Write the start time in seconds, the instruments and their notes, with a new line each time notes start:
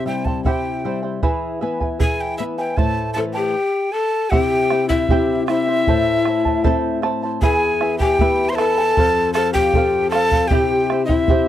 Already playing: nylon-string guitar C3
0.06 nylon-string guitar G3, charango E4 C5 E5 G5, quena G5
0.25 charango E4 C5 G5, quena A5, bombo low
0.44 nylon-string guitar E4, charango E4 G4 C5 E5 G5, quena G5, bombo low
0.85 nylon-string guitar G3, charango E4 C5 E5 G5
1.03 charango E4 C5 G5
1.23 nylon-string guitar E3, charango E4 G#4 B4 E5 G#5, bombo low
1.61 nylon-string guitar B3, charango E4 B4 E5 G#5
1.80 charango E4 B4 G#5, bombo low
1.99 charango E4 G#4 B4 E5 G#5, nylon-string guitar G#4, quena G#5, bombo low
2.21 quena G5
2.38 nylon-string guitar B3, charango E4 B4 E5 G#5, quena E5
2.58 charango E4 B4 G#5, quena G5
2.77 nylon-string guitar A2, charango E4 A4 C5 E5 A5, quena A5, bombo low
3.13 charango E4 C5 E5 A5, pan flute A4, quena A5
3.18 nylon-string guitar E3
3.33 charango E4 C5 A5, pan flute G4, quena G5
3.92 pan flute A4, quena A5
4.30 nylon-string guitar C3, charango E4 G4 C5 E5 G5, pan flute G4, quena G5, bombo low
4.70 charango E4 C5 E5 G5, bombo rim
4.88 pan flute E4, charango E4 C5 G5, quena E5, bombo low
5.09 nylon-string guitar C4 E4 G4, charango E4 G4 C5 E5 G5, bombo low
5.47 pan flute E4, charango E4 C5 E5 G5, quena E5, bombo rim
5.67 charango E4 C5 G5
5.87 nylon-string guitar A2, charango E4 A4 C5 E5 A5, bombo low
6.25 charango E4 C5 E5 A5, bombo rim
6.45 charango E4 C5 A5, bombo low
6.64 nylon-string guitar C4 E4 A4, charango E4 A4 C5 E5 A5, bombo low
7.02 charango E4 C5 E5 A5, bombo rim
7.23 charango E4 C5 A5
7.42 nylon-string guitar E2, charango E4 G#4 B4 E5 G#5, pan flute G#4, quena G#5, bombo low
7.81 charango E4 B4 E5 G#5, bombo rim
7.98 pan flute G4, quena G5, charango G#5, bombo low
8.02 charango E4 B4
8.19 nylon-string guitar B3 E4 B4, charango E4 B4 E5, bombo low
8.49 pan flute C5, quena C6
8.55 pan flute A4, quena A5, bombo rim
8.59 charango E4 B4 E5 G#5
8.78 charango E4 B4 G#5
8.97 nylon-string guitar F2, charango A4 C5 F5, bombo low
9.34 pan flute A4, charango A4 C5 F5, quena A5, bombo rim
9.53 pan flute G4, charango C5 F5, quena G5, bombo low
9.73 nylon-string guitar C4 F4 A4, charango A4 C5 F5, bombo low
10.10 pan flute A4, charango A4 C5, quena A5, bombo rim
10.15 charango F5
10.32 charango C5 F5, bombo low
10.48 nylon-string guitar C3, pan flute G4, charango E5, quena G5, bombo low
10.52 charango E4 G4 C5 G5
10.90 charango E4 C5 E5 G5, bombo rim
11.05 pan flute E4, quena E5, bombo low
11.09 charango E4 C5 G5
11.28 nylon-string guitar C4 E4 G4, charango E4 G4 C5 E5 G5, bombo low